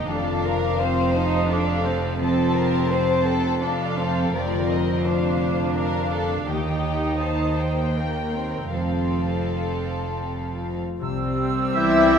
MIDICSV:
0, 0, Header, 1, 11, 480
1, 0, Start_track
1, 0, Tempo, 712589
1, 59, Time_signature, 3, 2, 24, 8
1, 4858, Tempo, 757576
1, 8010, End_track
2, 0, Start_track
2, 0, Title_t, "Flute section"
2, 0, Program_c, 0, 73
2, 7263, Note_on_c, 0, 88, 80
2, 8010, Note_off_c, 0, 88, 0
2, 8010, End_track
3, 0, Start_track
3, 0, Title_t, "Violin section"
3, 0, Program_c, 1, 48
3, 61, Note_on_c, 1, 77, 65
3, 995, Note_off_c, 1, 77, 0
3, 1015, Note_on_c, 1, 77, 67
3, 1481, Note_off_c, 1, 77, 0
3, 1502, Note_on_c, 1, 81, 60
3, 1972, Note_off_c, 1, 81, 0
3, 1980, Note_on_c, 1, 81, 60
3, 2445, Note_off_c, 1, 81, 0
3, 2460, Note_on_c, 1, 77, 69
3, 2922, Note_off_c, 1, 77, 0
3, 2930, Note_on_c, 1, 74, 66
3, 3163, Note_off_c, 1, 74, 0
3, 3168, Note_on_c, 1, 75, 59
3, 3400, Note_on_c, 1, 77, 58
3, 3406, Note_off_c, 1, 75, 0
3, 3869, Note_off_c, 1, 77, 0
3, 3877, Note_on_c, 1, 77, 59
3, 4356, Note_off_c, 1, 77, 0
3, 4367, Note_on_c, 1, 79, 54
3, 4855, Note_on_c, 1, 81, 51
3, 4858, Note_off_c, 1, 79, 0
3, 5091, Note_off_c, 1, 81, 0
3, 5092, Note_on_c, 1, 79, 56
3, 5811, Note_on_c, 1, 77, 41
3, 5814, Note_off_c, 1, 79, 0
3, 7110, Note_off_c, 1, 77, 0
3, 7726, Note_on_c, 1, 76, 92
3, 8010, Note_off_c, 1, 76, 0
3, 8010, End_track
4, 0, Start_track
4, 0, Title_t, "Violin section"
4, 0, Program_c, 2, 48
4, 65, Note_on_c, 2, 69, 57
4, 304, Note_off_c, 2, 69, 0
4, 304, Note_on_c, 2, 70, 67
4, 537, Note_on_c, 2, 72, 61
4, 542, Note_off_c, 2, 70, 0
4, 1008, Note_on_c, 2, 69, 52
4, 1011, Note_off_c, 2, 72, 0
4, 1469, Note_off_c, 2, 69, 0
4, 1477, Note_on_c, 2, 69, 63
4, 1722, Note_on_c, 2, 70, 72
4, 1724, Note_off_c, 2, 69, 0
4, 1968, Note_on_c, 2, 72, 64
4, 1971, Note_off_c, 2, 70, 0
4, 2204, Note_on_c, 2, 69, 72
4, 2211, Note_off_c, 2, 72, 0
4, 2429, Note_off_c, 2, 69, 0
4, 2437, Note_on_c, 2, 69, 54
4, 2911, Note_off_c, 2, 69, 0
4, 2920, Note_on_c, 2, 70, 56
4, 3401, Note_off_c, 2, 70, 0
4, 3406, Note_on_c, 2, 72, 51
4, 3885, Note_off_c, 2, 72, 0
4, 3888, Note_on_c, 2, 70, 57
4, 4124, Note_off_c, 2, 70, 0
4, 4126, Note_on_c, 2, 69, 57
4, 4364, Note_off_c, 2, 69, 0
4, 4370, Note_on_c, 2, 67, 53
4, 4849, Note_off_c, 2, 67, 0
4, 4855, Note_on_c, 2, 72, 47
4, 5326, Note_on_c, 2, 70, 40
4, 5328, Note_off_c, 2, 72, 0
4, 5812, Note_off_c, 2, 70, 0
4, 5814, Note_on_c, 2, 69, 39
4, 7136, Note_off_c, 2, 69, 0
4, 7729, Note_on_c, 2, 64, 73
4, 8010, Note_off_c, 2, 64, 0
4, 8010, End_track
5, 0, Start_track
5, 0, Title_t, "Harp"
5, 0, Program_c, 3, 46
5, 0, Note_on_c, 3, 51, 64
5, 0, Note_on_c, 3, 58, 48
5, 0, Note_on_c, 3, 63, 46
5, 0, Note_on_c, 3, 67, 47
5, 0, Note_on_c, 3, 70, 52
5, 0, Note_on_c, 3, 75, 52
5, 0, Note_on_c, 3, 79, 50
5, 0, Note_on_c, 3, 82, 56
5, 0, Note_on_c, 3, 86, 49
5, 58, Note_on_c, 3, 53, 64
5, 75, Note_off_c, 3, 51, 0
5, 76, Note_off_c, 3, 82, 0
5, 77, Note_off_c, 3, 79, 0
5, 77, Note_off_c, 3, 86, 0
5, 79, Note_off_c, 3, 70, 0
5, 79, Note_off_c, 3, 75, 0
5, 80, Note_off_c, 3, 58, 0
5, 80, Note_off_c, 3, 63, 0
5, 82, Note_off_c, 3, 67, 0
5, 182, Note_on_c, 3, 60, 53
5, 305, Note_on_c, 3, 72, 55
5, 426, Note_on_c, 3, 65, 50
5, 530, Note_off_c, 3, 72, 0
5, 538, Note_on_c, 3, 72, 65
5, 661, Note_on_c, 3, 84, 55
5, 783, Note_on_c, 3, 81, 59
5, 891, Note_off_c, 3, 72, 0
5, 899, Note_on_c, 3, 72, 58
5, 1125, Note_off_c, 3, 72, 0
5, 1133, Note_on_c, 3, 72, 56
5, 1239, Note_off_c, 3, 60, 0
5, 1247, Note_on_c, 3, 60, 47
5, 1482, Note_off_c, 3, 53, 0
5, 1490, Note_on_c, 3, 53, 69
5, 1607, Note_off_c, 3, 60, 0
5, 1615, Note_on_c, 3, 60, 54
5, 1727, Note_off_c, 3, 72, 0
5, 1735, Note_on_c, 3, 72, 55
5, 1857, Note_on_c, 3, 69, 54
5, 1971, Note_off_c, 3, 72, 0
5, 1980, Note_on_c, 3, 72, 56
5, 2090, Note_off_c, 3, 84, 0
5, 2098, Note_on_c, 3, 84, 53
5, 2205, Note_off_c, 3, 81, 0
5, 2213, Note_on_c, 3, 81, 56
5, 2326, Note_off_c, 3, 72, 0
5, 2334, Note_on_c, 3, 72, 55
5, 2446, Note_off_c, 3, 69, 0
5, 2454, Note_on_c, 3, 69, 50
5, 2566, Note_off_c, 3, 72, 0
5, 2574, Note_on_c, 3, 72, 48
5, 2684, Note_off_c, 3, 60, 0
5, 2692, Note_on_c, 3, 60, 49
5, 2811, Note_on_c, 3, 57, 46
5, 2920, Note_off_c, 3, 53, 0
5, 2928, Note_on_c, 3, 53, 72
5, 2946, Note_off_c, 3, 81, 0
5, 2948, Note_off_c, 3, 57, 0
5, 2948, Note_off_c, 3, 69, 0
5, 2950, Note_off_c, 3, 65, 0
5, 3042, Note_on_c, 3, 50, 48
5, 3157, Note_off_c, 3, 72, 0
5, 3165, Note_on_c, 3, 72, 51
5, 3289, Note_on_c, 3, 65, 52
5, 3406, Note_on_c, 3, 74, 54
5, 3516, Note_off_c, 3, 84, 0
5, 3524, Note_on_c, 3, 84, 45
5, 3644, Note_on_c, 3, 86, 51
5, 3757, Note_off_c, 3, 74, 0
5, 3765, Note_on_c, 3, 74, 49
5, 3998, Note_off_c, 3, 72, 0
5, 4006, Note_on_c, 3, 72, 47
5, 4127, Note_on_c, 3, 62, 42
5, 4246, Note_on_c, 3, 58, 40
5, 4367, Note_on_c, 3, 51, 59
5, 4386, Note_off_c, 3, 50, 0
5, 4388, Note_off_c, 3, 84, 0
5, 4389, Note_off_c, 3, 53, 0
5, 4389, Note_off_c, 3, 60, 0
5, 4389, Note_off_c, 3, 62, 0
5, 4389, Note_off_c, 3, 72, 0
5, 4389, Note_off_c, 3, 74, 0
5, 4491, Note_on_c, 3, 63, 47
5, 4613, Note_on_c, 3, 67, 45
5, 4739, Note_on_c, 3, 70, 39
5, 4862, Note_on_c, 3, 75, 48
5, 5094, Note_on_c, 3, 82, 48
5, 5204, Note_off_c, 3, 75, 0
5, 5211, Note_on_c, 3, 75, 41
5, 5326, Note_off_c, 3, 70, 0
5, 5334, Note_on_c, 3, 70, 39
5, 5442, Note_off_c, 3, 67, 0
5, 5450, Note_on_c, 3, 67, 36
5, 5563, Note_off_c, 3, 63, 0
5, 5571, Note_on_c, 3, 63, 33
5, 5684, Note_off_c, 3, 58, 0
5, 5691, Note_on_c, 3, 58, 28
5, 5814, Note_on_c, 3, 53, 44
5, 5833, Note_off_c, 3, 51, 0
5, 5833, Note_off_c, 3, 86, 0
5, 5834, Note_off_c, 3, 58, 0
5, 5834, Note_off_c, 3, 67, 0
5, 5834, Note_off_c, 3, 75, 0
5, 5834, Note_off_c, 3, 82, 0
5, 5835, Note_off_c, 3, 63, 0
5, 5835, Note_off_c, 3, 65, 0
5, 5836, Note_off_c, 3, 70, 0
5, 5939, Note_on_c, 3, 60, 35
5, 6062, Note_on_c, 3, 65, 32
5, 6184, Note_on_c, 3, 69, 36
5, 6306, Note_on_c, 3, 84, 40
5, 6426, Note_on_c, 3, 77, 30
5, 6545, Note_on_c, 3, 81, 34
5, 6777, Note_off_c, 3, 69, 0
5, 6784, Note_on_c, 3, 69, 36
5, 6900, Note_off_c, 3, 65, 0
5, 6907, Note_on_c, 3, 65, 32
5, 7018, Note_off_c, 3, 60, 0
5, 7026, Note_on_c, 3, 60, 30
5, 7150, Note_on_c, 3, 57, 28
5, 7266, Note_on_c, 3, 48, 74
5, 7283, Note_off_c, 3, 69, 0
5, 7284, Note_off_c, 3, 53, 0
5, 7284, Note_off_c, 3, 65, 0
5, 7285, Note_off_c, 3, 57, 0
5, 7285, Note_off_c, 3, 81, 0
5, 7286, Note_off_c, 3, 77, 0
5, 7489, Note_off_c, 3, 60, 0
5, 7497, Note_on_c, 3, 60, 53
5, 7736, Note_on_c, 3, 59, 55
5, 7969, Note_off_c, 3, 60, 0
5, 8010, Note_off_c, 3, 48, 0
5, 8010, Note_off_c, 3, 59, 0
5, 8010, Note_off_c, 3, 84, 0
5, 8010, End_track
6, 0, Start_track
6, 0, Title_t, "Oboe"
6, 0, Program_c, 4, 68
6, 7733, Note_on_c, 4, 67, 80
6, 8010, Note_off_c, 4, 67, 0
6, 8010, End_track
7, 0, Start_track
7, 0, Title_t, "Clarinet"
7, 0, Program_c, 5, 71
7, 7729, Note_on_c, 5, 64, 85
7, 8010, Note_off_c, 5, 64, 0
7, 8010, End_track
8, 0, Start_track
8, 0, Title_t, "Viola section"
8, 0, Program_c, 6, 48
8, 63, Note_on_c, 6, 62, 53
8, 542, Note_off_c, 6, 62, 0
8, 548, Note_on_c, 6, 60, 64
8, 778, Note_on_c, 6, 63, 74
8, 782, Note_off_c, 6, 60, 0
8, 1009, Note_on_c, 6, 62, 70
8, 1013, Note_off_c, 6, 63, 0
8, 1244, Note_on_c, 6, 60, 65
8, 1246, Note_off_c, 6, 62, 0
8, 1484, Note_off_c, 6, 60, 0
8, 1492, Note_on_c, 6, 60, 65
8, 2435, Note_off_c, 6, 60, 0
8, 2455, Note_on_c, 6, 62, 57
8, 2692, Note_off_c, 6, 62, 0
8, 2693, Note_on_c, 6, 60, 66
8, 2926, Note_off_c, 6, 60, 0
8, 2934, Note_on_c, 6, 60, 53
8, 3399, Note_off_c, 6, 60, 0
8, 3409, Note_on_c, 6, 62, 59
8, 3641, Note_off_c, 6, 62, 0
8, 3649, Note_on_c, 6, 62, 55
8, 4357, Note_off_c, 6, 62, 0
8, 4374, Note_on_c, 6, 63, 59
8, 5331, Note_on_c, 6, 58, 41
8, 5332, Note_off_c, 6, 63, 0
8, 5566, Note_off_c, 6, 58, 0
8, 5570, Note_on_c, 6, 60, 47
8, 5807, Note_off_c, 6, 60, 0
8, 5814, Note_on_c, 6, 60, 43
8, 7111, Note_off_c, 6, 60, 0
8, 7263, Note_on_c, 6, 55, 66
8, 7265, Note_on_c, 6, 60, 60
8, 8010, Note_off_c, 6, 55, 0
8, 8010, Note_off_c, 6, 60, 0
8, 8010, End_track
9, 0, Start_track
9, 0, Title_t, "French horn section"
9, 0, Program_c, 7, 60
9, 7255, Note_on_c, 7, 55, 70
9, 7260, Note_on_c, 7, 48, 71
9, 8010, Note_off_c, 7, 48, 0
9, 8010, Note_off_c, 7, 55, 0
9, 8010, End_track
10, 0, Start_track
10, 0, Title_t, "Cello section"
10, 0, Program_c, 8, 48
10, 62, Note_on_c, 8, 41, 80
10, 2903, Note_off_c, 8, 41, 0
10, 2928, Note_on_c, 8, 41, 71
10, 4342, Note_off_c, 8, 41, 0
10, 4372, Note_on_c, 8, 39, 63
10, 5790, Note_off_c, 8, 39, 0
10, 5813, Note_on_c, 8, 41, 54
10, 7111, Note_off_c, 8, 41, 0
10, 7733, Note_on_c, 8, 52, 82
10, 8010, Note_off_c, 8, 52, 0
10, 8010, End_track
11, 0, Start_track
11, 0, Title_t, "Double bass section"
11, 0, Program_c, 10, 48
11, 61, Note_on_c, 10, 29, 67
11, 2903, Note_off_c, 10, 29, 0
11, 2932, Note_on_c, 10, 29, 66
11, 4345, Note_off_c, 10, 29, 0
11, 4370, Note_on_c, 10, 39, 56
11, 5789, Note_off_c, 10, 39, 0
11, 5812, Note_on_c, 10, 29, 46
11, 7110, Note_off_c, 10, 29, 0
11, 7264, Note_on_c, 10, 36, 66
11, 8010, Note_off_c, 10, 36, 0
11, 8010, End_track
0, 0, End_of_file